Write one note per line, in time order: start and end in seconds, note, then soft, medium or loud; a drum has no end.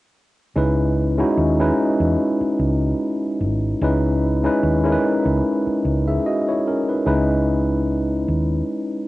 0.56 1.21 C#2 medium
0.56 1.09 G#3 medium
0.56 1.09 C#4 medium
0.56 1.10 D#4 medium
0.56 1.10 E4 medium
0.56 1.10 B4 medium
1.18 1.53 G#3 medium
1.18 1.53 C#4 medium
1.18 1.54 D#4 medium
1.18 1.54 E4 medium
1.18 1.54 F#4 medium
1.37 1.70 D#2 medium
1.60 2.98 G#3 medium
1.60 2.98 C#4 medium
1.60 2.99 D#4 medium
1.60 2.99 E4 medium
1.60 2.99 B4 medium
2.00 2.15 E2 medium
2.41 muted fingered electric bass stroke soft
2.59 2.92 C#2 medium
3.41 3.73 G#1 medium
3.81 4.47 C#2 loud
3.81 4.35 G#3 medium
3.81 4.35 C#4 medium
3.81 4.36 D#4 medium
3.81 4.36 E4 medium
3.81 4.36 B4 medium
4.44 4.78 G#3 medium
4.44 4.78 C#4 medium
4.44 4.79 D#4 medium
4.44 4.79 E4 medium
4.44 4.79 B4 medium
4.63 4.96 D#2 medium
4.83 6.23 G#3 medium
4.83 5.84 C#4 medium
4.83 5.84 D#4 medium
4.83 5.85 E4 medium
4.83 4.91 A#4 medium
4.92 5.88 B4 medium
5.25 5.40 C#2 medium
5.67 muted fingered electric bass stroke soft
5.85 6.17 C#2 medium
6.08 6.25 G#4 medium
6.08 6.25 E5 medium
6.26 6.47 F#4 medium
6.26 6.47 D#5 medium
6.49 6.66 E4 medium
6.49 6.66 C#5 medium
6.67 6.88 C#4 soft
6.67 6.88 A#4 medium
6.89 7.05 D#4 soft
6.89 7.06 B4 medium
7.06 8.24 C#2 medium
7.06 8.48 G#3 medium
7.06 8.48 C#4 medium
7.06 8.48 D#4 medium
7.06 8.49 E4 medium
7.06 8.49 B4 medium
8.28 8.61 D#2 medium